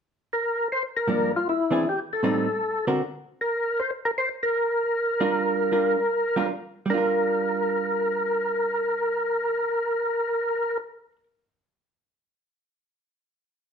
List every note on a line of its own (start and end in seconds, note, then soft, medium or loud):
0.33 0.68 A#4 medium
0.72 0.83 C5 medium
0.97 1.32 A#4 medium
1.08 1.31 G2 medium
1.08 1.31 F3 medium
1.08 1.31 A#3 medium
1.08 1.31 D4 medium
1.36 1.48 F4 medium
1.49 1.88 E4 medium
1.71 1.84 E3 medium
1.71 1.84 C4 medium
1.71 1.84 D4 medium
1.71 1.85 G#4 medium
1.89 2.00 G4 medium
2.13 2.85 A4 medium
2.23 2.46 A2 medium
2.23 2.47 G3 medium
2.23 2.47 C4 medium
2.23 2.47 D#4 medium
2.87 3.00 D3 medium
2.87 3.00 C4 medium
2.87 3.00 F#4 medium
2.87 3.00 A#4 medium
3.41 3.81 A#4 medium
3.79 3.91 C5 medium
4.05 4.11 A#4 medium
4.18 4.29 C5 medium
4.43 6.46 A#4 loud
5.20 5.70 G3 medium
5.20 5.70 D4 medium
5.20 5.70 F4 medium
5.20 5.71 A#4 medium
5.72 5.95 G3 soft
5.72 5.95 D4 medium
5.72 5.95 F4 soft
5.72 5.95 A#4 soft
6.36 6.49 G3 medium
6.36 6.49 D4 medium
6.36 6.49 F4 medium
6.36 6.49 A#4 medium
6.86 11.11 G3 medium
6.90 11.16 D4 medium
6.90 11.20 F4 medium
6.90 10.78 A#4 medium
6.98 11.23 A#4 medium